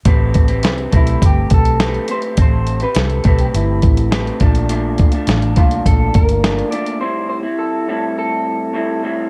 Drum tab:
HH |x-xxxxxxx-xxxxxx|x-xxxxxxx-xxxxxx|x-xxxxxxx-xxxxxx|----------------|
SD |----o-------o---|----o-------o---|----o-------o---|----------------|
BD |o-o---o-o-o-----|o-----o---o---o-|--o---o-o-o-----|----------------|